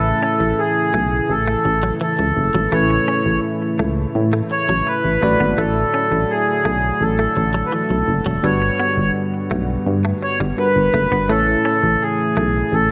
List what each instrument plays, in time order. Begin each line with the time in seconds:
Already playing: fm bass A1, tine electric piano A2 A3 C#4 E4 E5, analog synth pad C#3 E3 A3 E4, accordion A4
0.23 clean electric guitar C#4
0.40 fm bass A1, muted clean electric guitar stroke
0.59 accordion G#4
0.94 fm bass B1, clean electric guitar A3
1.30 fm bass A1, accordion A4
1.48 clean electric guitar A3
1.65 fm bass A1, muted clean electric guitar stroke
1.83 clean electric guitar F#3
2.01 clean electric guitar E3, accordion A4
2.19 fm bass C#2, muted clean electric guitar stroke
2.37 fm bass F#1
2.54 fm bass G#1, clean electric guitar F#3
2.71 fm bass A1, tine electric piano A2 C#4 E4 A4 B4, clean electric guitar A3, accordion C#5
2.90 muted clean electric guitar stroke
3.08 clean electric guitar C#4
3.26 fm bass A1
3.79 fm bass C#2, clean electric guitar A3
4.15 fm bass A2
4.33 clean electric guitar A3
4.51 accordion C#5, muted clean electric guitar stroke
4.69 fm bass A1, clean electric guitar F#3
4.87 accordion B4, muted clean electric guitar stroke
5.05 fm bass A1
5.21 fm bass A1, tine electric piano A2 A3 E4 F#4 D5, analog synth pad D3 F#3, clean electric guitar A3
5.40 fm bass G#1, clean electric guitar B3
5.58 fm bass A1, clean electric guitar A3, accordion A4
5.94 clean electric guitar C#4
6.12 fm bass A1, muted clean electric guitar stroke
6.30 accordion G#4
6.65 fm bass B1, clean electric guitar A3
7.01 fm bass A1, accordion A4
7.19 clean electric guitar A3
7.37 fm bass A1, muted clean electric guitar stroke
7.54 clean electric guitar F#3
7.66 accordion B4
7.72 clean electric guitar E3, accordion A4
7.90 fm bass B1, muted clean electric guitar stroke
8.08 fm bass F#1
8.26 fm bass E1, clean electric guitar F#3
8.43 fm bass G1, tine electric piano G2 G3 D4 F#4 B4, clean electric guitar G3, analog synth pad G3 B3 F#4, accordion C#5
8.62 muted clean electric guitar stroke
8.80 clean electric guitar B3
8.97 fm bass G1
9.51 fm bass B1, clean electric guitar A3
9.87 fm bass G2
10.05 clean electric guitar A3
10.23 accordion C#5, muted clean electric guitar stroke
10.40 fm bass G1, clean electric guitar G3
10.58 tine electric piano G3 D4 F#4 A#4, accordion B4, muted clean electric guitar stroke
10.65 tine electric piano B4
10.76 fm bass G1
10.94 fm bass F#1, clean electric guitar A3
11.12 fm bass G1, clean electric guitar B3
11.29 fm bass A1, tine electric piano A2 A3 C#4 E4 C#5, analog synth pad C#3 E3 A3 E4, clean electric guitar A3, accordion A4
11.65 clean electric guitar C#4
11.83 fm bass A1, muted clean electric guitar stroke
12.02 accordion G#4
12.37 fm bass B1, clean electric guitar A3
12.72 fm bass A1, accordion A4